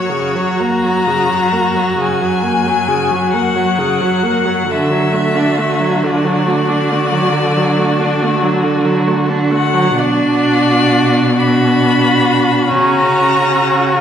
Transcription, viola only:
0.00 0.11 F#3 soft
0.10 0.37 C#3 soft
0.35 0.62 F#3 soft
0.60 0.86 A#3 soft
0.84 1.08 F#3 soft
1.07 1.31 C#3 soft
1.29 1.54 F#3 soft
1.52 1.77 A#3 soft
1.75 1.97 F#3 soft
1.98 2.23 C#3 soft
2.21 2.44 F#3 soft
2.43 2.68 A#3 soft
2.66 2.90 F#3 soft
2.88 3.13 C#3 soft
3.11 3.35 F#3 soft
3.34 3.57 A#3 soft
3.55 3.80 F#3 soft
3.78 4.02 C#3 soft
4.01 4.25 F#3 soft
4.23 4.47 A#3 soft
4.46 4.68 F#3 soft
4.68 4.92 D3 soft
4.90 5.14 F#3 soft
5.13 5.37 A3 soft
5.35 5.60 D4 soft
5.58 5.81 A3 soft
5.80 6.05 F#3 soft
6.03 6.26 D3 soft
6.24 6.48 F#3 soft
6.47 6.70 A3 soft
6.69 6.93 D4 soft
6.91 7.14 A3 soft
7.12 7.33 F#3 soft
7.34 7.58 D3 soft
7.57 7.80 F#3 soft
7.78 8.01 A3 soft
8.00 8.24 D4 soft
8.22 8.44 A3 soft
8.43 8.65 F#3 soft
8.63 8.87 D3 soft
8.85 9.09 F#3 soft
9.07 9.31 A3 soft
9.29 9.53 D4 soft
9.51 9.75 A3 soft
9.73 9.96 F#3 soft
9.97 11.35 D4 soft
11.38 12.67 D4 soft
12.71 14.01 C#4 soft

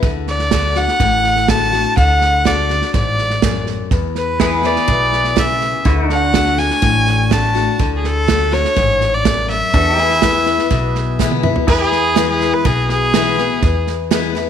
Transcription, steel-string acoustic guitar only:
0.03 0.50 D3 medium
0.51 0.75 D3 medium
0.51 0.75 A3 soft
0.51 0.75 D4 medium
0.51 0.74 F#4 medium
0.76 1.00 D4 soft
0.76 0.99 F#4 medium
1.01 1.92 A2 medium
1.48 1.72 D3 medium
1.48 1.72 A3 medium
1.48 1.72 D4 medium
1.48 1.71 F#4 medium
1.72 1.97 D4 soft
1.72 1.96 F#4 medium
1.98 2.44 D3 medium
2.45 2.69 D3 medium
2.45 2.69 A3 soft
2.45 2.69 D4 medium
2.45 2.68 F#4 medium
2.69 2.94 D4 soft
2.69 2.93 F#4 soft
2.94 3.40 G#2 medium
3.43 3.89 F#2 medium
3.92 4.84 E2 medium
4.40 4.63 E3 medium
4.40 4.63 G#3 medium
4.40 4.64 B3 medium
4.40 4.62 E4 medium
4.63 4.88 B3 soft
4.63 4.87 E4 soft
4.88 5.34 B2 medium
5.36 5.83 C#3 medium
5.85 6.32 D3 medium
6.33 6.57 D3 medium
6.33 6.57 A3 medium
6.33 6.58 D4 medium
6.33 6.56 F#4 medium
6.58 6.82 D4 soft
6.58 6.81 F#4 medium
6.82 7.75 A2 medium
7.30 7.54 D3 medium
7.30 7.54 A3 medium
7.30 7.55 D4 medium
7.30 7.53 F#4 medium
7.55 7.80 D4 medium
7.55 7.78 F#4 medium
7.79 8.26 D3 medium
8.28 8.51 D3 medium
8.28 8.52 A3 medium
8.28 8.52 D4 medium
8.28 8.50 F#4 medium
8.52 8.77 D4 soft
8.52 8.76 F#4 medium
8.76 9.23 G#2 medium
9.25 9.72 F#2 medium
9.74 10.66 E2 medium
10.22 10.46 E3 soft
10.22 10.46 G#3 medium
10.22 10.46 B3 medium
10.22 10.45 E4 medium
10.46 10.71 B3 soft
10.46 10.70 E4 medium
10.71 11.63 B2 medium
11.19 11.43 E3 medium
11.19 11.43 G#3 soft
11.19 11.44 B3 medium
11.19 11.42 E4 medium
11.43 11.68 B3 soft
11.43 11.67 E4 medium
11.68 12.60 E2 medium
12.16 12.62 E3 medium
12.16 12.63 G#3 medium
12.16 12.63 B3 medium
12.16 12.64 E4 medium
12.65 13.57 B2 medium
13.14 13.37 E3 medium
13.14 13.38 G#3 medium
13.14 13.38 B3 medium
13.14 13.36 E4 loud
13.38 13.62 B3 soft
13.38 13.61 E4 medium
13.63 14.49 E2 medium
14.11 14.34 E3 medium
14.11 14.34 G#3 medium
14.11 14.35 B3 medium
14.11 14.34 E4 medium
14.35 14.49 B3 medium
14.35 14.49 E4 medium

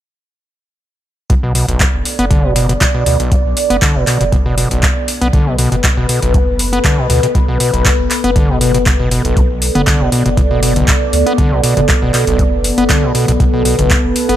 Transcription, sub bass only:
1.30 1.64 B1 loud
1.68 1.78 F#1 loud
1.94 2.03 F#1 medium
2.19 2.77 F#1 loud
3.06 3.17 D2 medium
3.45 3.54 B1 medium
3.70 3.79 F#1 loud
3.95 4.04 F#1 medium
4.21 4.66 F#1 loud
4.71 4.80 F#1 medium
5.22 5.31 B1 loud
5.33 5.67 B1 medium
5.72 5.81 F#1 loud
5.97 6.06 F#1 medium
6.22 6.80 F#1 loud
7.10 7.20 D2 medium
7.48 7.57 B1 medium
7.74 7.83 F#1 loud
7.99 8.08 F#1 medium
8.24 8.60 F#1 loud
8.61 9.20 F#1 loud
9.25 9.34 F#1 medium
9.37 9.70 B1 loud
9.75 9.84 F#1 loud
10.00 10.10 F#1 medium
10.26 10.84 F#1 loud
11.13 11.23 D2 medium
11.52 11.61 B1 medium
11.77 11.86 F#1 loud
12.02 12.11 F#1 medium
12.27 12.73 F#1 loud
12.78 12.87 F#1 medium
13.28 13.37 B1 medium
13.40 13.74 B1 loud
13.79 13.88 F#1 loud
14.04 14.13 F#1 medium
14.29 14.37 F#1 loud

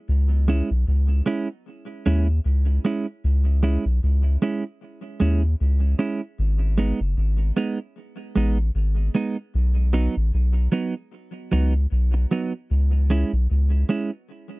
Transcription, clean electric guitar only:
0.48 0.69 G#3 medium
0.48 0.69 C#4 medium
0.48 0.69 E4 medium
1.26 1.47 G#3 medium
1.26 1.47 C#4 loud
1.26 1.48 E4 loud
2.06 2.26 G#3 medium
2.06 2.26 C#4 medium
2.06 2.27 E4 medium
2.85 3.05 G#3 medium
2.85 3.06 C#4 medium
2.85 3.06 E4 medium
3.63 3.84 G#3 medium
3.63 3.84 C#4 medium
3.63 3.84 E4 medium
4.42 4.63 G#3 medium
4.42 4.63 C#4 medium
4.42 4.63 E4 medium
5.20 5.41 G#3 medium
5.20 5.42 C#4 medium
5.20 5.42 E4 medium
5.99 6.20 G#3 medium
5.99 6.20 C#4 medium
5.99 6.21 E4 medium
6.78 6.99 G#3 medium
6.78 6.99 B3 medium
6.78 6.99 D#4 medium
7.57 7.78 G#3 medium
7.57 7.78 B3 medium
7.57 7.78 D#4 medium
8.36 8.57 G#3 medium
8.36 8.57 B3 medium
8.36 8.57 D#4 medium
9.15 9.36 G#3 medium
9.15 9.36 B3 medium
9.15 9.36 D#4 medium
9.93 10.14 F#3 medium
9.93 10.15 B3 medium
9.93 10.15 D#4 medium
10.72 10.93 F#3 medium
10.72 10.94 B3 medium
10.72 10.94 D#4 medium
11.52 11.72 F#3 medium
11.52 11.73 B3 medium
11.52 11.73 D#4 medium
12.14 muted clean electric guitar stroke soft
12.31 12.52 F#3 medium
12.31 12.52 B3 medium
12.31 12.52 D#4 medium
13.10 13.31 G#3 medium
13.10 13.31 C#4 medium
13.10 13.31 E4 medium
13.89 14.10 G#3 medium
13.89 14.10 C#4 medium
13.89 14.10 E4 medium

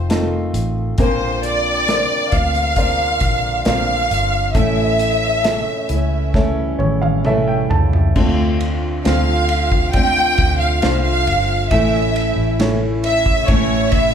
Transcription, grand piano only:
0.00 0.95 F3 medium
0.00 0.09 D#4 soft
0.00 0.10 F4 soft
0.00 0.10 A4 soft
0.09 0.96 D#4 soft
0.09 0.96 F4 soft
0.09 0.96 A4 medium
0.99 4.51 A#3 medium
1.89 2.74 A#4 soft
1.89 2.75 C5 soft
1.89 2.75 D5 soft
2.77 3.63 A#4 soft
2.77 3.63 C5 soft
2.77 3.64 D5 medium
3.65 4.52 A#4 soft
3.65 4.52 C5 soft
3.65 4.52 D5 medium
4.55 8.12 A3 medium
5.44 6.31 A4 soft
5.44 6.31 C#5 soft
5.44 6.31 E5 soft
6.34 7.22 A4 soft
6.34 6.77 C#5 soft
6.34 7.23 E5 soft
6.79 7.00 C#5 medium
7.02 7.23 F5 medium
7.25 8.14 A4 soft
7.25 8.14 C#5 soft
7.25 7.47 E5 medium
7.48 7.69 G5 medium
7.70 8.12 A5 medium
8.16 11.68 D3 medium
9.04 9.91 D4 soft
9.04 9.91 F4 soft
9.04 9.92 C5 soft
10.83 11.69 D4 soft
10.83 11.69 F4 soft
10.83 11.69 C5 medium
11.72 14.14 A3 medium
12.60 13.46 E4 soft
12.60 13.46 A4 soft
12.60 13.46 C#5 medium

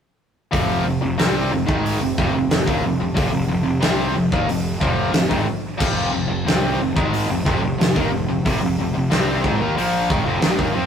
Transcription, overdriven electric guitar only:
0.51 0.84 F2 medium
0.51 0.84 C3 medium
0.51 0.84 F3 loud
0.85 1.00 F2 medium
0.85 1.01 C3 medium
1.01 1.18 F2 medium
1.01 1.17 C3 medium
1.18 1.50 C3 medium
1.18 1.50 G3 medium
1.18 1.51 C4 loud
1.52 1.66 F2 medium
1.52 1.67 C3 medium
1.66 1.99 G#2 medium
1.66 2.00 D#3 medium
1.66 2.00 G#3 medium
2.01 2.17 F2 medium
2.01 2.17 C3 medium
2.18 2.33 F2 medium
2.18 2.34 C3 loud
2.35 2.51 F2 medium
2.35 2.51 C3 medium
2.52 2.68 F2 medium
2.52 2.66 C3 medium
2.66 2.82 D#3 medium
2.66 2.82 A#3 loud
2.84 2.99 F2 medium
2.84 2.99 C3 medium
3.00 3.13 F2 medium
3.00 3.14 C3 medium
3.14 3.31 F2 medium
3.14 3.31 C3 loud
3.32 3.47 F2 medium
3.32 3.47 C3 medium
3.48 3.62 F2 medium
3.48 3.63 C3 medium
3.63 3.81 F2 medium
3.63 3.79 C3 medium
3.81 4.14 C3 medium
3.81 4.14 G3 medium
3.81 4.14 C4 medium
4.15 4.32 F2 medium
4.15 4.32 C3 medium
4.32 4.47 D#3 medium
4.32 4.48 A#3 loud
4.48 4.75 F2 medium
4.48 4.75 C3 medium
4.80 5.11 F2 medium
4.80 5.12 C3 loud
4.80 5.13 F3 loud
5.13 5.29 F2 medium
5.13 5.29 C3 medium
5.29 5.46 G#2 medium
5.29 5.45 D#3 loud
5.78 6.11 F2 medium
5.78 6.11 C3 medium
5.78 6.11 F3 loud
6.13 6.27 F2 medium
6.13 6.27 C3 medium
6.28 6.45 F2 medium
6.28 6.45 C3 medium
6.46 6.78 C3 medium
6.46 6.78 G3 loud
6.46 6.79 C4 medium
6.78 6.95 F2 medium
6.78 6.95 C3 medium
6.96 7.28 G#2 loud
6.96 7.28 D#3 medium
6.96 7.28 G#3 medium
7.30 7.44 F2 medium
7.30 7.45 C3 medium
7.45 7.61 F2 loud
7.45 7.61 C3 loud
7.63 7.77 F2 medium
7.63 7.78 C3 medium
7.78 7.95 F2 medium
7.78 7.94 C3 medium
7.94 8.09 D#3 medium
7.94 8.10 A#3 medium
8.10 8.27 F2 medium
8.10 8.27 C3 medium
8.28 8.44 F2 medium
8.28 8.44 C3 medium
8.45 8.60 F2 medium
8.45 8.60 C3 loud
8.61 8.77 F2 medium
8.61 8.77 C3 medium
8.79 8.93 F2 medium
8.79 8.93 C3 medium
8.94 9.10 F2 medium
8.94 9.09 C3 medium
9.10 9.42 C3 medium
9.10 9.42 G3 medium
9.10 9.42 C4 loud
9.43 9.59 G#2 medium
9.43 9.59 D#3 loud
9.60 9.75 D#3 medium
9.60 9.75 A#3 medium
9.76 10.08 A#2 medium
9.76 10.08 F3 loud
9.76 10.08 A#3 medium
10.09 10.24 G#2 medium
10.09 10.25 D#3 loud
10.25 10.40 F2 loud
10.25 10.41 C3 loud
10.42 10.57 G#2 medium
10.42 10.57 D#3 loud
10.58 10.73 D#3 medium
10.58 10.74 A#3 medium
10.73 10.86 F3 medium
10.73 10.86 C4 medium

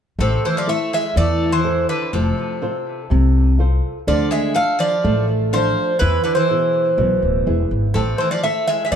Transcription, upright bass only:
0.19 0.36 A1 medium
1.16 1.84 E2 medium
2.13 2.30 F1 medium
3.11 3.79 C2 loud
4.07 4.24 D2 medium
5.05 5.72 A1 loud
6.01 6.18 E2 loud
6.98 7.15 B1 medium
7.22 7.44 D1 medium
7.47 7.69 E1 medium
7.71 7.93 G#1 medium
7.95 8.12 A1 loud
8.92 8.96 E2 medium

